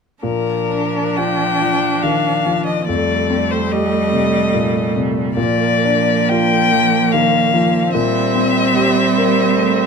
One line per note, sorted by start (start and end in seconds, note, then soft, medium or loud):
0.22 2.83 A#2 soft
0.22 2.90 F3 soft
0.22 2.89 D4 soft
0.22 1.18 A#4 medium
0.70 1.44 D4 soft
1.17 1.87 F4 soft
1.17 2.04 G5 medium
1.62 2.29 F3 soft
2.03 2.45 D#3 soft
2.03 2.65 F5 medium
2.46 2.88 F3 soft
2.66 2.87 D#5 soft
2.88 5.34 F2 soft
2.88 5.40 G3 soft
2.88 5.36 A3 soft
2.88 3.53 D5 medium
3.30 3.96 C4 soft
3.51 3.73 C5 soft
3.71 4.37 G4 soft
3.71 4.95 D#5 medium
4.12 4.78 C3 soft
4.54 4.95 A#2 soft
4.96 5.38 C3 soft
5.36 7.90 A#2 medium
5.36 7.97 F3 soft
5.36 7.90 A#3 medium
5.36 6.31 D5 medium
5.84 6.56 D4 soft
6.29 6.97 F4 soft
6.29 7.14 G5 medium
6.72 7.37 F3 soft
7.12 7.54 D#3 soft
7.12 7.94 F5 medium
7.54 7.94 F3 soft
7.93 9.87 A#2 medium
7.93 9.87 G3 medium
7.93 9.87 C4 medium
7.93 9.87 E5 medium
8.35 9.01 C4 soft
8.76 9.41 G4 soft
9.17 9.80 A#3 soft
9.57 9.87 A3 soft